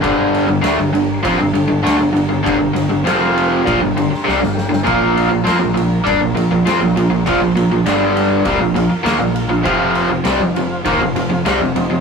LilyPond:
<<
  \new Staff \with { instrumentName = "Transistor combo organ" } { \time 4/4 \key g \minor \tempo 4 = 100 << { r1 | r2 r8 c'''8 bes''16 f''16 g''8 | r1 | r1 |
r1 | } \\ { <d' g' c''>8 <d' g' bes'>8 <d' g' bes'>8 <d' g' bes'>8 <d' g' bes'>8 <d' g' a'>8 <d' g' bes'>8 <d' g' bes'>8 | <d' g' bes'>8 <d' g' bes'>8 <c' f' c''>8 <c' f' c''>8 <d' g' bes'>8 <d' g' bes'>8 <d' g' bes'>8 <d' g' bes'>8 | <bes f' bes'>8 <bes f' bes'>8 <bes f' bes'>8 <bes f' bes'>8 <bes f' bes'>8 <bes f' bes'>8 <bes f' bes'>8 <bes f' bes'>8 | <bes f' c''>8 <bes f' bes'>8 <d' g' d''>8 <d' g' d''>8 <f' bes' f''>8 <f' bes' f''>8 <f' bes' f''>8 <f' bes' f''>8 |
<f' c'' f''>8 <f' c'' f''>8 <f' c'' ees''>8 <f' c'' f''>8 <f' c'' f''>8 <f' c'' f''>8 <f' c'' f''>8 <f' c'' ees''>8 | } >> }
  \new Staff \with { instrumentName = "Overdriven electric guitar" } { \clef bass \time 4/4 \key g \minor <g, d g>8. <g, d>16 <d a>16 <g, d>16 <g, d>8 <f c'>16 <g, d>16 <g, d>16 <g, d>16 <d a>16 <g, d>16 <g, d>16 <g, d>16 | <g, d>16 <g, d>16 <g, d>16 <g, d>16 <f, c f>4 <bes, f>16 <g, d>16 <g, d>16 r16 <c g>16 <g, d>8 <g, d>16 | <bes, f bes>8. <bes, f>16 <f c'>16 <bes, f>16 <bes, f>8 <g d'>16 <bes, f>16 <bes, f>16 <bes, f>16 <f c'>16 <bes, f>16 <bes, f>16 <bes, f>16 | <bes, f>16 <bes, f>16 <bes, f>16 <bes, f>16 <g, d g>4 <c g>16 <bes, f>16 <bes, f>16 r16 <ees bes>16 <bes, f>8 <bes, f>16 |
<f, c f>8. <f, c>16 <c g>16 <f, c>16 <f, c>8 <ees bes>16 <f, c>16 <f, c>16 <f, c>16 <c g>16 <f, c>16 <f, c>16 <f, c>16 | }
  \new Staff \with { instrumentName = "Picked electric bass" } { \clef bass \time 4/4 \key g \minor g,,8. g,,16 d,16 g,,16 g,,8 f,16 g,,16 g,,16 g,,16 d,16 g,,16 g,,16 g,,16 | g,,16 g,,16 g,,16 g,,16 f,,4 bes,,16 g,,16 g,,16 r16 c,16 g,,8 g,,16 | bes,,8. bes,,16 f,16 bes,,16 bes,,8 g,16 bes,,16 bes,,16 bes,,16 f,16 bes,,16 bes,,16 bes,,16 | bes,,16 bes,,16 bes,,16 bes,,16 g,,4 c,16 bes,,16 bes,,16 r16 ees,16 bes,,8 bes,,16 |
f,,8. f,,16 c,16 f,,16 f,,8 ees,16 f,,16 f,,16 f,,16 c,16 f,,16 f,,16 f,,16 | }
  \new DrumStaff \with { instrumentName = "Drums" } \drummode { \time 4/4 <bd cymr>8 cymr8 <cymr sn>8 cymr8 <bd cymr>8 cymr8 <cymr sn>8 cymr8 | <bd cymr>8 cymr8 <cymr sn>8 cymr8 <bd cymr>8 cymr16 sn16 sn16 sn16 sn16 sn16 | <bd cymr>8 cymr8 <cymr sn>8 cymr8 <bd cymr>8 cymr8 <cymr sn>8 cymr8 | <bd cymr>8 cymr8 <cymr sn>8 cymr8 <bd cymr>8 cymr8 <cymr sn>8 cymr8 |
<bd cymr>8 cymr8 <cymr sn>8 cymr8 <bd cymr>8 cymr8 <cymr sn>8 cymr8 | }
>>